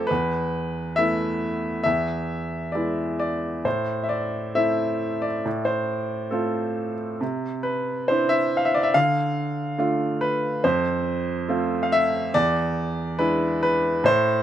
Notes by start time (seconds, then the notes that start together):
Already playing: F2 A3 C4 F4 A4 C5 D5
0.07 E2 B4
0.96 A3 B3 E4 E5
1.83 E2 E5
2.72 G#3 B3 E4 D5
3.19 D5
3.65 A2 C5
4.03 E5
4.09 D5
4.55 A3 C4 E4 E5
5.22 D5
5.45 A2
5.65 C5
6.31 A3 C4 F4 A4
7.21 C3
7.63 B4
8.08 C4 D4 E4 C5
8.29 E5
8.57 F5
8.65 E5
8.74 D5
8.83 E5
8.94 D3 F5
9.78 A3 D4 F4
10.21 B4
10.64 F2 C5
11.48 A3 C4 F4
11.83 F5
11.92 E5
12.34 E2 D5
13.19 G#3 D4 E4 B4
13.63 B4
14.04 A2 C5